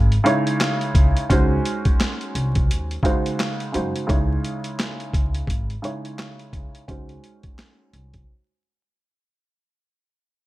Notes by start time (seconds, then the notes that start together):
Already playing: G#1 C#3 G#3 D#4 E4 C#5
0.12 closed hi-hat
0.24 C#3 G#3 D#4 E4 C#5, closed hi-hat
0.47 closed hi-hat
0.60 snare, clap, closed hi-hat
0.81 closed hi-hat
0.95 C#2, kick, closed hi-hat
1.17 closed hi-hat
1.29 C#2 G#3 C#4 D#4 F#4 C5, kick, closed hi-hat
1.65 closed hi-hat
1.85 kick, closed hi-hat
2.00 snare, clap, closed hi-hat
2.21 closed hi-hat
2.35 C2, closed hi-hat
2.55 kick, closed hi-hat
2.70 D#2, closed hi-hat
2.91 closed hi-hat
3.03 C#3 G#3 D#4 F#4 C5, kick, closed hi-hat
3.26 closed hi-hat
3.39 snare, clap, closed hi-hat
3.60 closed hi-hat
3.72 F#2 C#3 G#3 D#4 F#4 C5, closed hi-hat
3.96 closed hi-hat
4.07 C#2 C#3 G#3 D#4 E4 C#5, kick, closed hi-hat
4.45 closed hi-hat
4.64 closed hi-hat
4.80 snare, clap, closed hi-hat
5.00 closed hi-hat
5.13 C#2, kick, closed hi-hat
5.34 closed hi-hat
5.47 G#1, kick, closed hi-hat
5.70 closed hi-hat
5.82 C#3 G#3 D#4 E4 C#5, closed hi-hat
6.05 closed hi-hat
6.18 snare, clap, closed hi-hat
6.39 closed hi-hat
6.53 C#2, kick, closed hi-hat
6.75 closed hi-hat
6.88 C#2 G#3 C#4 D#4 F#4 C5, kick, closed hi-hat
7.09 closed hi-hat
7.24 closed hi-hat
7.43 kick, closed hi-hat
7.59 snare, clap, closed hi-hat
7.93 C2, closed hi-hat
8.14 kick, closed hi-hat